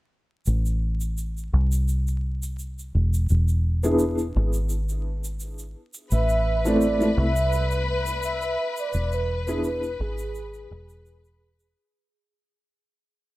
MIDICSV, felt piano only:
0, 0, Header, 1, 2, 480
1, 0, Start_track
1, 0, Key_signature, 0, "minor"
1, 0, Tempo, 705882
1, 318, Time_signature, 4, 2, 24, 8
1, 9085, End_track
2, 0, Start_track
2, 0, Title_t, "Felt piano"
2, 0, Program_c, 0, 0
2, 2606, Note_on_c, 0, 59, 93
2, 2609, Note_on_c, 0, 62, 85
2, 2613, Note_on_c, 0, 64, 82
2, 2617, Note_on_c, 0, 68, 96
2, 2816, Note_off_c, 0, 59, 0
2, 2817, Note_off_c, 0, 62, 0
2, 2819, Note_off_c, 0, 64, 0
2, 2821, Note_off_c, 0, 68, 0
2, 4523, Note_on_c, 0, 57, 96
2, 4525, Note_on_c, 0, 60, 89
2, 4531, Note_on_c, 0, 64, 85
2, 4535, Note_on_c, 0, 69, 100
2, 4734, Note_off_c, 0, 57, 0
2, 4735, Note_off_c, 0, 60, 0
2, 4738, Note_off_c, 0, 64, 0
2, 4740, Note_off_c, 0, 69, 0
2, 4763, Note_on_c, 0, 57, 70
2, 4765, Note_on_c, 0, 60, 67
2, 4769, Note_on_c, 0, 64, 63
2, 4775, Note_on_c, 0, 69, 78
2, 4890, Note_off_c, 0, 57, 0
2, 4891, Note_off_c, 0, 60, 0
2, 4893, Note_off_c, 0, 64, 0
2, 4896, Note_off_c, 0, 69, 0
2, 6438, Note_on_c, 0, 59, 89
2, 6443, Note_on_c, 0, 62, 85
2, 6448, Note_on_c, 0, 64, 91
2, 6452, Note_on_c, 0, 68, 100
2, 6652, Note_off_c, 0, 59, 0
2, 6654, Note_off_c, 0, 62, 0
2, 6656, Note_off_c, 0, 64, 0
2, 6659, Note_off_c, 0, 68, 0
2, 9085, End_track
0, 0, End_of_file